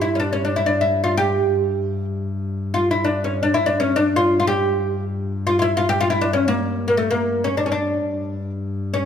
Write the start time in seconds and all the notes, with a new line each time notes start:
Already playing: G2
0.01 E4
0.15 C#4
0.20 D4
0.33 C#4
0.45 D4
0.56 E4
0.66 D4
0.81 E4
1.04 F4
1.17 G4
2.74 F4
2.91 E4
3.04 D4
3.24 C#4
3.43 D4
3.54 E4
3.63 G2 D4
3.80 C#4
3.96 D4
4.16 F4
4.40 F4
4.47 G4
5.47 F4
5.59 E4 F4
5.77 F4
5.89 G4
6.01 F4
6.10 E4
6.21 D4
6.33 C#4
6.48 A#3
6.88 A#3
6.97 A3
7.11 A#3
7.44 C#4
7.57 D4
7.66 C#4
7.72 D4
8.10 G2
8.94 C#4